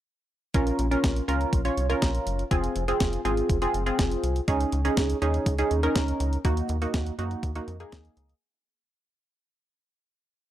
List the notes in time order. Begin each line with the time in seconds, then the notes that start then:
0.54 A#1 C#4 F4 A#4, kick, closed hi-hat
0.67 closed hi-hat
0.79 A#1, closed hi-hat
0.91 C#4 F4 A#4, closed hi-hat
1.04 A#1, kick, snare, closed hi-hat
1.16 closed hi-hat
1.28 C#2 C#4 F4 A#4, closed hi-hat
1.41 closed hi-hat
1.53 A#1, kick, closed hi-hat
1.65 C#4 F4 C#5, closed hi-hat
1.77 C2, closed hi-hat
1.89 C#4 F4 A#4, closed hi-hat
2.02 A#1, kick, snare, closed hi-hat
2.15 closed hi-hat
2.27 F#1, closed hi-hat
2.39 closed hi-hat
2.51 F1 C4 F4 G#4, kick, closed hi-hat
2.64 closed hi-hat
2.76 F1, closed hi-hat
2.88 C4 F4 G#4, closed hi-hat
3.00 F1, kick, snare, closed hi-hat
3.13 closed hi-hat
3.25 G#1 C4 F4 G#4, closed hi-hat
3.37 closed hi-hat
3.50 F1, kick, closed hi-hat
3.62 C4 F4 G#4, closed hi-hat
3.74 F#1, closed hi-hat
3.86 C4 F4 G#4, closed hi-hat
3.99 F1, kick, snare, closed hi-hat
4.11 closed hi-hat
4.23 C2, closed hi-hat
4.36 closed hi-hat
4.48 C#2 C#4 D#4 G#4, kick, closed hi-hat
4.61 closed hi-hat
4.72 C#2, closed hi-hat
4.85 C#4 D#4 G#4, closed hi-hat
4.97 C#2, kick, snare, closed hi-hat
5.10 closed hi-hat
5.22 D#2 C#4 D#4 G#4, closed hi-hat
5.34 closed hi-hat
5.46 C#2, kick, closed hi-hat
5.58 C#4 D#4 G#4, closed hi-hat
5.71 D#2, closed hi-hat
5.83 C#4 D#4 A#4, closed hi-hat
5.96 C#2, kick, snare, closed hi-hat
6.08 closed hi-hat
6.20 C#2, closed hi-hat
6.33 closed hi-hat
6.45 D#2 A#3 D#4 F#4, kick, closed hi-hat
6.57 closed hi-hat
6.69 D#2, closed hi-hat
6.82 A#3 D#4 F#4, closed hi-hat
6.94 D#2, kick, snare, closed hi-hat
7.06 closed hi-hat
7.19 F#2 A#3 D#4 F#4, closed hi-hat
7.31 closed hi-hat
7.43 D#2, kick, closed hi-hat
7.55 A#3 D#4 F#4, closed hi-hat
7.68 F2, closed hi-hat
7.80 A#3 D#4 G#4, closed hi-hat
7.92 D#2, kick, snare, closed hi-hat
8.05 closed hi-hat
8.17 C#2, closed hi-hat
8.29 closed hi-hat